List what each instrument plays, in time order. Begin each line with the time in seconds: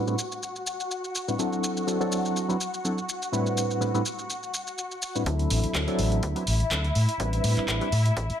Already playing: string section F#4 F#5
0.07 reed electric piano A2 G3 C4 D4 E4 B4, shaker
0.19 shaker
0.32 shaker
0.43 shaker
0.56 shaker
0.67 shaker
0.80 shaker
0.91 shaker
1.04 shaker
1.15 shaker
1.28 reed electric piano A2 G3 C4 D4 E4 B4, shaker
1.39 reed electric piano F#3 C4 D4 E4 A4, shaker
1.53 shaker
1.64 shaker
1.77 shaker
1.87 reed electric piano F#3 C4 D4 E4 A4, shaker
2.00 reed electric piano F#3 C4 D4 E4 A4, shaker
2.12 shaker
2.25 shaker
2.36 shaker
2.48 reed electric piano F#3 C4 D4 E4 B4, shaker
2.61 shaker
2.74 shaker
2.84 reed electric piano F#3 C4 D4 E4 A4, shaker
2.98 shaker
3.09 shaker
3.22 shaker
3.32 reed electric piano A2 G3 C4 D4 E4 B4, shaker
3.46 shaker
3.57 shaker
3.71 shaker
3.80 reed electric piano A2 G3 C4 D4 E4 B4, shaker
3.94 reed electric piano A2 G3 C4 D4 E4 B4, shaker
4.06 shaker
4.19 shaker
4.30 shaker
4.43 shaker
4.54 shaker
4.67 shaker
4.78 shaker
4.91 shaker
5.02 shaker
5.15 reed electric piano A2 G3 C4 D4 E4 B4, shaker
5.26 fingered electric bass D2, reed electric piano F#3 C4 D4 E4 A4, string section E4 E5, kick, closed hi-hat
5.39 closed hi-hat
5.50 fingered electric bass A1, open hi-hat
5.64 muted fingered electric bass stroke, closed hi-hat
5.74 fingered electric bass D2, reed electric piano F#3 C4 D4 E4 A4, kick, clap, closed hi-hat
5.87 reed electric piano F#3 C4 D4 E4 A4, closed hi-hat
5.99 fingered electric bass A1, open hi-hat
6.12 closed hi-hat
6.23 fingered electric bass D2, kick, closed hi-hat
6.36 reed electric piano F#3 C4 D4 E4 B4, closed hi-hat
6.47 fingered electric bass A1, open hi-hat
6.60 muted fingered electric bass stroke, closed hi-hat
6.71 fingered electric bass D2, reed electric piano F#3 C4 D4 E4 A4, kick, clap, closed hi-hat
6.84 closed hi-hat
6.95 fingered electric bass A2, open hi-hat
7.09 closed hi-hat
7.20 fingered electric bass A1, reed electric piano G3 C4 D4 E4 B4, kick, closed hi-hat
7.33 closed hi-hat
7.44 fingered electric bass A2, open hi-hat
7.57 muted fingered electric bass stroke, clap, closed hi-hat
7.68 fingered electric bass A1, reed electric piano G3 C4 D4 E4 B4, kick, clap, closed hi-hat
7.81 reed electric piano G3 C4 D4 E4 B4, closed hi-hat
7.92 fingered electric bass A2, open hi-hat
8.06 closed hi-hat
8.17 fingered electric bass A1, kick, closed hi-hat
8.30 muted fingered electric bass stroke, closed hi-hat